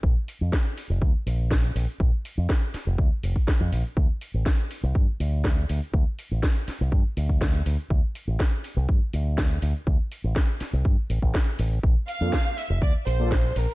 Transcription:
<<
  \new Staff \with { instrumentName = "Violin section" } { \time 4/4 \key d \minor \tempo 4 = 122 r1 | r1 | r1 | r1 |
r1 | r1 | r8 f''4 e''8 d''8 c''4 bes'8 | }
  \new Staff \with { instrumentName = "Analog polysynth" } { \time 4/4 \key d \minor r1 | r1 | r1 | r1 |
r1 | r1 | r8. <bes d' f' a' d''>16 r4. r16 <bes d' f' a' d''>16 r4 | }
  \new Staff \with { instrumentName = "Fingered electric bass" } { \clef bass \time 4/4 \key d \minor bes,,16 r8 f,16 r8. f,,16 d,16 r16 bes,,4 bes,,16 r16 | bes,,16 r8 f,16 r8. f,,16 d,16 r16 f,,16 r8 f,16 bes,,16 r16 | d,16 r8 a,,16 r8. c,16 g,16 r16 d,4 d,16 r16 | d,16 r8 a,,16 r8. c,16 g,16 r16 d,4 d,16 r16 |
d,16 r8 a,,16 r8. c,16 g,16 r16 d,4 d,16 r16 | d,16 r8 a,,16 r8. c,16 g,16 r16 a,,16 a,,16 r8 a,,16 r16 | bes,,16 r8 f,16 r8. f,,16 d,16 r16 bes,,4 bes,,16 r16 | }
  \new DrumStaff \with { instrumentName = "Drums" } \drummode { \time 4/4 bd8 hho8 <bd sn>8 hho8 bd8 hho8 <bd sn>8 hho8 | bd8 hho8 <bd sn>8 <hho sn>8 bd8 hho16 bd16 <bd sn>8 hho8 | bd8 hho8 <bd sn>8 hho8 bd8 hho8 <bd sn>8 hho8 | bd8 hho8 <bd sn>8 <hho sn>8 bd8 hho16 bd16 <bd sn>8 hho8 |
bd8 hho8 <bd sn>8 hho8 bd8 hho8 <bd sn>8 hho8 | bd8 hho8 <bd sn>8 <hho sn>8 bd8 hho16 bd16 <bd sn>8 hho8 | bd8 hho8 <bd sn>8 hho8 bd8 hho8 <bd sn>8 hho8 | }
>>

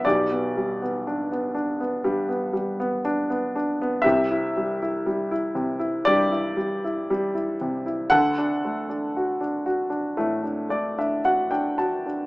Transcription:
<<
  \new Staff \with { instrumentName = "Grand piano" } { \time 4/4 \key d \mixolydian \tempo 4 = 59 << { r1 | r1 | r2 r8 d''16 e''16 fis''16 g''16 a''8 | } \\ { <g' d''>2. r4 | <g' e''>2 <g' d''>2 | <a' fis''>2. r4 | } >> }
  \new Staff \with { instrumentName = "Grand piano" } { \time 4/4 \key d \mixolydian <b,, b,>16 b16 g16 b16 d'16 b16 d'16 b16 <g, g>16 b16 g16 b16 d'16 b16 d'16 b16 | <c, c>16 e'16 g16 e'16 g16 e'16 c16 e'16 <g, g>16 e'16 g16 e'16 g16 e'16 c16 e'16 | <d, d>16 d'16 a16 d'16 fis'16 d'16 fis'16 d'16 <a, a>16 d'16 a16 d'16 fis'16 d'16 fis'16 d'16 | }
>>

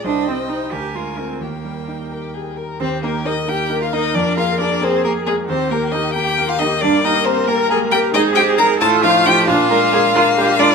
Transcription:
<<
  \new Staff \with { instrumentName = "Violin" } { \time 6/8 \key ees \major \tempo 4. = 90 c''4. bes'4. | g'4. g'8 aes'8 bes'8 | c''8 bes'8 ees''8 g''8. f''16 ees''8 | d''8 f''8 d''8 c''8 bes'8 aes'8 |
c''8 bes'8 ees''8 g''8. f''16 ees''8 | d''8 ees''8 c''8 bes'8 aes'8 g''8 | ees''8 g''8 bes''8 a''8 f''8 g''8 | f''2~ f''8 d''8 | }
  \new Staff \with { instrumentName = "Viola" } { \time 6/8 \key ees \major ees''4. bes'4. | bes'2~ bes'8 r8 | g'4. bes'4.~ | bes'4. aes'4. |
g'2. | bes'2. | aes'4. f'4. | d'8 bes'8 aes'8 f'8 g'8 f'8 | }
  \new Staff \with { instrumentName = "Cello" } { \time 6/8 \key ees \major d'8 c'8 ees'8 g'8 f'8 c'8 | bes2~ bes8 r8 | c'8 bes8 ees'8 g'8. f'16 ees'8 | d'8 f'8 d'8 c'8 bes8 aes8 |
c'8 bes8 ees'8 g'8. f'16 ees'8 | d'8 ees'8 c'8 bes8 aes8 g'8 | ees'8 g'8 bes'8 a'8 f'8 g'8 | f'2~ f'8 d'8 | }
  \new Staff \with { instrumentName = "Grand piano" } { \time 6/8 \key ees \major c,8 g8 <ees' c''>8 d,8 aes8 <f' bes'>8 | ees,8 g8 ees'8 bes'8 g'8 bes'8 | ees,8 <bes ees' bes'>8 <bes ees' bes'>8 <bes ees' bes'>8 <bes ees' bes'>8 <bes ees' bes'>8 | f,8 <bes aes' bes'>8 <bes aes' bes'>8 <bes aes' bes'>8 <bes aes' bes'>8 <bes aes' bes'>8 |
ees,8 <bes g' bes'>8 <bes g' bes'>8 <bes g' bes'>8 <bes g' bes'>8 <bes g' bes'>8 | g,8 <bes g' bes'>8 <bes g' bes'>8 <bes g' bes'>8 <bes g' bes'>8 <bes g' bes'>8 | aes,8 <aes ees' c''>8 <aes ees' c''>8 a,8 <f ees' c''>8 <f ees' c''>8 | bes,8 <aes d' bes'>8 <aes d' bes'>8 <aes d' bes'>8 <aes d' bes'>8 <aes d' bes'>8 | }
  \new Staff \with { instrumentName = "Violin" } { \time 6/8 \key ees \major g''4. aes''4. | g''2~ g''8 r8 | c'8 bes8 ees'8 g'8. f'16 ees'8 | d'8 f'8 d'8 c'8 bes8 aes8 |
bes2.~ | bes2. | c'4. a4. | bes4. bes4. | }
>>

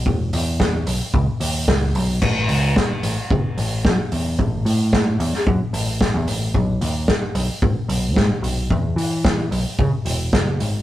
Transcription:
<<
  \new Staff \with { instrumentName = "Picked electric bass" } { \clef bass \time 4/4 \key e \major \tempo 4 = 111 e,,8 e,4 b,,16 r16 cis,16 r16 dis,8 cis,8 b,,8 | a,,8 cis,8 r8 a,,16 r16 fis,,16 r16 a,,8 fis,16 r16 e,8 | a,,8 a,4 e,16 r16 fis,16 r16 a,,8. e,16 a,,8 | b,,8 dis,8 r8 b,,16 r16 gis,,16 r16 b,,8 gis,16 r16 b,,8 |
e,8 e4 b,,16 r16 cis16 r16 e,,8 fis,,8 gis,,8 | }
  \new DrumStaff \with { instrumentName = "Drums" } \drummode { \time 4/4 bd8 hho8 <bd sn>8 hho8 bd8 hho8 <bd sn>8 hho8 | <cymc bd>8 hho8 <bd sn>8 hho8 bd8 hho8 <bd sn>8 hho8 | bd8 hho8 <bd sn>8 hho16 sn16 bd8 hho8 <bd sn>8 hho8 | bd8 hho8 <bd sn>8 hho8 bd8 hho8 <bd sn>8 hho8 |
bd8 hho8 <bd sn>8 hho8 bd8 hho8 <bd sn>8 hho8 | }
>>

